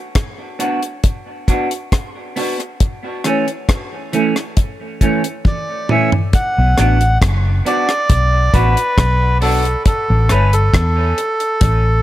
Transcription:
0.15 kick loud
0.15 cross-stick loud
0.15 closed hi-hat medium
0.59 0.79 B3 medium
0.59 0.79 D4 medium
0.59 0.80 F#4 medium
0.59 closed hi-hat medium
0.83 closed hi-hat soft
1.04 kick loud
1.04 closed hi-hat medium
1.48 1.68 B3 medium
1.48 1.68 D4 medium
1.48 1.68 F#4 medium
1.48 kick medium
1.48 closed hi-hat medium
1.71 closed hi-hat medium
1.92 kick loud
1.92 cross-stick loud
1.92 closed hi-hat medium
2.36 2.56 B3 medium
2.36 2.56 D4 medium
2.36 2.57 F#4 medium
2.36 open hi-hat medium
2.60 closed hi-hat soft
2.80 kick loud
2.80 closed hi-hat medium
3.24 3.44 E3 medium
3.24 3.45 A3 medium
3.24 3.45 C#4 medium
3.24 cross-stick medium
3.24 closed hi-hat medium
3.48 closed hi-hat soft
3.69 kick loud
3.69 cross-stick loud
3.69 closed hi-hat medium
4.13 4.33 E3 medium
4.13 4.33 A3 loud
4.13 4.33 C#4 loud
4.13 closed hi-hat medium
4.36 cross-stick medium
4.36 closed hi-hat soft
4.57 kick loud
4.57 closed hi-hat medium
5.01 5.21 E3 medium
5.01 5.21 A3 medium
5.01 5.21 C#4 loud
5.01 kick medium
5.01 closed hi-hat medium
5.24 closed hi-hat medium
5.45 5.92 D5 medium
5.45 kick loud
5.45 high tom medium
5.89 6.09 E3 medium
5.89 6.09 A3 medium
5.89 6.10 C#4 medium
5.89 6.11 E5 medium
5.89 mid tom medium
6.12 floor tom medium
6.33 7.18 F#5 loud
6.33 kick loud
6.33 closed hi-hat medium
6.58 6.76 B1 loud
6.77 7.17 A1 medium
6.77 6.97 B3 medium
6.77 6.97 D4 medium
6.77 6.98 F#4 medium
6.77 cross-stick medium
6.77 closed hi-hat medium
7.01 closed hi-hat soft
7.22 7.60 F#1 loud
7.22 kick loud
7.22 cross-stick loud
7.22 closed hi-hat medium
7.65 7.85 B3 medium
7.65 7.86 D4 medium
7.65 7.86 F#4 medium
7.65 8.57 D5 loud
7.65 closed hi-hat medium
7.89 cross-stick medium
7.89 closed hi-hat soft
8.10 8.48 B1 medium
8.10 kick loud
8.10 closed hi-hat medium
8.54 8.74 A1 medium
8.54 8.73 B3 medium
8.54 8.74 D4 medium
8.54 8.74 F#4 loud
8.54 9.38 B4 loud
8.54 kick medium
8.54 closed hi-hat medium
8.77 closed hi-hat medium
8.98 9.74 B1 medium
8.98 kick loud
8.98 cross-stick loud
8.98 closed hi-hat medium
9.41 9.61 B3 medium
9.41 9.61 D4 medium
9.41 9.62 F#4 medium
9.41 9.83 A4 medium
9.41 open hi-hat medium
9.65 closed hi-hat soft
9.86 10.32 A4 medium
9.86 kick loud
9.86 closed hi-hat medium
10.10 10.28 A1 loud
10.29 10.68 G1 medium
10.29 10.49 E3 medium
10.29 10.49 A3 medium
10.29 10.50 C#4 medium
10.29 10.54 B4 loud
10.29 cross-stick medium
10.29 closed hi-hat medium
10.53 12.02 A4 medium
10.53 closed hi-hat medium
10.74 11.12 E2 medium
10.74 kick loud
10.74 cross-stick loud
10.74 closed hi-hat medium
11.18 closed hi-hat medium
11.40 closed hi-hat soft
11.61 12.00 A1 loud
11.61 kick loud
11.61 closed hi-hat medium

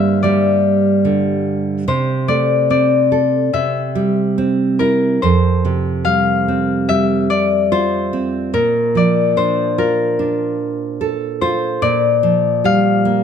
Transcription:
0.00 1.83 G2 medium
0.00 0.60 D3 soft
0.00 0.23 G3 medium
0.00 1.42 A#3 soft
0.00 0.56 C5 medium
0.00 0.22 D5 medium
0.00 1.54 E5 medium
0.23 1.84 G3 medium
0.23 2.07 D5 medium
1.05 1.85 D3 soft
1.88 3.49 C3 medium
1.88 3.86 C5 medium
2.28 3.49 A3 medium
2.28 2.70 D5 medium
2.70 3.50 C4 soft
2.70 4.55 D5 medium
3.12 3.52 A4 soft
3.53 5.18 C3 medium
3.53 5.26 E5 medium
3.95 5.18 G3 soft
4.38 5.19 C4 medium
4.79 5.21 E4 soft
4.79 6.91 A#4 medium
5.22 8.50 F2 medium
5.22 7.20 C5 medium
5.65 7.27 C3 soft
6.05 6.89 G3 soft
6.05 6.95 F5 medium
6.48 8.09 C4 soft
6.89 8.50 G3 soft
6.89 8.61 E5 medium
7.30 8.97 D5 medium
7.72 8.52 F4 medium
7.72 9.37 C5 medium
8.13 8.53 C4 soft
8.54 11.78 A#2 medium
8.54 9.78 A#4 medium
8.95 10.56 F3 soft
8.95 10.82 D5 medium
9.37 10.18 D4 medium
9.37 11.35 C5 medium
9.78 11.38 F4 soft
9.78 11.90 A#4 medium
10.19 11.79 D4 medium
11.01 11.80 A4 medium
11.41 11.81 F4 medium
11.41 13.23 C5 medium
11.82 13.23 A#2 medium
11.82 13.23 D5 medium
12.23 13.23 F3 soft
12.64 13.23 G3 medium
12.64 13.23 F5 loud
13.05 13.23 A#3 medium

